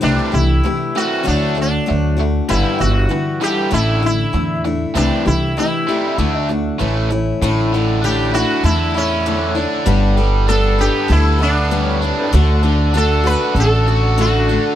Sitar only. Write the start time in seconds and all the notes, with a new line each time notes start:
0.03 D4
0.34 E4
0.97 F#4
1.27 D4
1.61 D4
2.50 E4
2.81 F#4
3.44 G4
3.74 E4
4.06 E4
4.97 D4
5.27 E4
5.59 E4
6.40 D4
8.04 G4
8.35 F#4
8.65 E4
8.97 C#4
10.49 A4
10.81 G4
11.12 E4
11.43 D4
11.84 C#4
12.97 A4
13.27 B4
13.60 A4
14.21 F#4